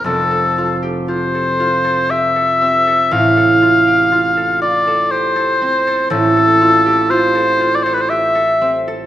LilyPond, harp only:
\new Staff \with { instrumentName = "Harp" } { \time 3/4 \key f \major \tempo 4 = 60 <f,, f, c'>16 a'16 f'16 g'16 f'16 a'16 f'16 a'16 g'16 a'16 c'16 a'16 | <a,, a,>16 a'16 f'16 g'16 f'16 a'16 f'16 a'16 g'16 a'16 c'16 a'16 | \key f \lydian <a,, a,>16 a'16 f'16 g'16 f'16 a'16 f'16 a'16 g'16 a'16 c'16 a'16 | }